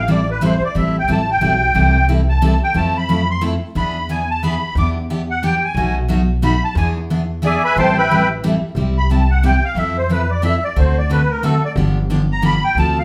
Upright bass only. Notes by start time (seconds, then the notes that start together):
Already playing: A1
0.75 A1
1.08 A1
1.42 B1
1.75 C2
2.75 F2
3.75 E2
4.75 E2
5.75 B1
6.75 E2
7.76 A1
8.75 C2
9.75 F2
10.76 D2
11.76 G1
12.75 D2